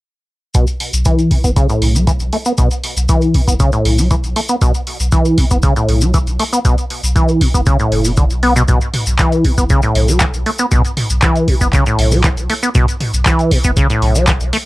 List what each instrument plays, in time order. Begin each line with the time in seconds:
0.54 sub bass B1, acid bass B2, kick, closed hi-hat, maracas
0.67 closed hi-hat, maracas
0.80 open hi-hat
0.93 sub bass B1, closed hi-hat, maracas
1.05 acid bass E3, kick, closed hi-hat, maracas
1.19 closed hi-hat, maracas
1.31 acid bass B2, kick, open hi-hat
1.44 sub bass F#1, acid bass B3, kick, closed hi-hat, maracas
1.56 acid bass C#3, kick, closed hi-hat, maracas
1.69 acid bass A2, closed hi-hat, maracas
1.82 sub bass B1, open hi-hat
1.95 acid bass F#3, closed hi-hat, maracas
2.07 acid bass E3, kick, closed hi-hat, maracas
2.20 sub bass B1, closed hi-hat, maracas
2.33 acid bass A3, open hi-hat
2.45 acid bass B3, closed hi-hat, maracas
2.58 sub bass B1, acid bass B2, kick, closed hi-hat, maracas
2.71 closed hi-hat, maracas
2.84 open hi-hat
2.97 sub bass B1, closed hi-hat, maracas
3.09 acid bass E3, kick, closed hi-hat, maracas
3.21 closed hi-hat, maracas
3.34 acid bass B2, kick, open hi-hat
3.47 sub bass F#1, acid bass B3, kick, closed hi-hat, maracas
3.60 acid bass C#3, kick, closed hi-hat, maracas
3.72 acid bass A2, closed hi-hat, maracas
3.85 sub bass B1, open hi-hat
3.98 acid bass F#3, open hi-hat, maracas
4.11 acid bass E3, kick, closed hi-hat, maracas
4.24 sub bass B1, closed hi-hat, maracas
4.36 acid bass A3, open hi-hat
4.49 acid bass B3, closed hi-hat, maracas
4.61 sub bass B1, acid bass B2, kick, closed hi-hat, maracas
4.74 closed hi-hat, maracas
4.87 open hi-hat
5.00 sub bass B1, closed hi-hat, maracas
5.12 acid bass E3, kick, closed hi-hat, maracas
5.25 closed hi-hat, maracas
5.38 acid bass B2, kick, open hi-hat
5.51 sub bass F#1, acid bass B3, kick, closed hi-hat, maracas
5.62 acid bass C#3, kick, closed hi-hat, maracas
5.76 acid bass A2, closed hi-hat, maracas
5.89 sub bass B1, open hi-hat
6.01 acid bass F#3, closed hi-hat, maracas
6.14 acid bass E3, kick, closed hi-hat, maracas
6.27 sub bass B1, closed hi-hat, maracas
6.39 acid bass A3, open hi-hat
6.53 acid bass B3, closed hi-hat, maracas
6.65 sub bass B1, acid bass B2, kick, closed hi-hat, maracas
6.78 closed hi-hat, maracas
6.90 open hi-hat
7.03 sub bass B1, closed hi-hat, maracas
7.16 acid bass E3, kick, closed hi-hat, maracas
7.29 closed hi-hat, maracas
7.41 acid bass B2, kick, open hi-hat
7.54 sub bass F#1, acid bass B3, kick, closed hi-hat, maracas
7.66 acid bass C#3, kick, closed hi-hat, maracas
7.79 acid bass A2, closed hi-hat, maracas
7.92 sub bass F#1, open hi-hat
8.05 acid bass B2, open hi-hat, maracas
8.17 acid bass D3, kick, closed hi-hat, maracas
8.30 sub bass B1, closed hi-hat, maracas
8.43 acid bass B3, open hi-hat
8.56 acid bass B2, closed hi-hat, maracas
8.68 sub bass B1, acid bass B2, kick, closed hi-hat, mid tom, maracas
8.81 closed hi-hat, maracas
8.94 mid tom, open hi-hat
9.06 sub bass B1, maracas
9.19 acid bass E3, kick, clap, closed hi-hat, maracas
9.32 closed hi-hat, maracas
9.45 acid bass B2, kick, open hi-hat
9.58 sub bass F#1, acid bass B3, kick, closed hi-hat, maracas
9.70 acid bass C#3, kick, closed hi-hat, maracas
9.82 acid bass A2, closed hi-hat, maracas
9.95 sub bass B1, open hi-hat
10.08 acid bass F#3, closed hi-hat, maracas
10.20 acid bass E3, kick, clap, closed hi-hat, maracas
10.34 sub bass B1, closed hi-hat, maracas
10.46 acid bass A3, open hi-hat
10.59 acid bass B3, closed hi-hat, maracas
10.72 sub bass B1, acid bass B2, kick, closed hi-hat, mid tom, maracas
10.85 closed hi-hat, maracas
10.97 mid tom, open hi-hat
11.10 sub bass B1, closed hi-hat, maracas
11.22 acid bass E3, kick, clap, closed hi-hat, maracas
11.36 closed hi-hat, maracas
11.48 acid bass B2, kick, open hi-hat
11.61 sub bass F#1, acid bass B3, kick, closed hi-hat, maracas
11.73 acid bass C#3, kick, clap, closed hi-hat, maracas
11.86 acid bass A2, closed hi-hat, maracas
11.99 sub bass B1, open hi-hat
12.12 acid bass F#3, mid tom, open hi-hat, maracas
12.24 acid bass E3, kick, clap, closed hi-hat, maracas
12.37 sub bass B1, closed hi-hat, maracas
12.50 acid bass A3, open hi-hat
12.63 acid bass B3, closed hi-hat, maracas
12.75 sub bass B1, acid bass B2, kick, closed hi-hat, mid tom, maracas
12.88 closed hi-hat, maracas
13.01 mid tom, open hi-hat
13.13 sub bass B1, closed hi-hat, maracas
13.26 acid bass E3, kick, clap, closed hi-hat, maracas
13.39 closed hi-hat, maracas
13.51 acid bass B2, kick, open hi-hat
13.64 sub bass F#1, acid bass B3, kick, maracas
13.77 acid bass C#3, kick, closed hi-hat, maracas
13.90 acid bass A2, closed hi-hat, maracas
14.02 sub bass B1, open hi-hat
14.15 acid bass F#3, closed hi-hat, maracas
14.27 acid bass E3, kick, clap, closed hi-hat, maracas
14.40 sub bass B1, closed hi-hat, maracas
14.53 acid bass A3, open hi-hat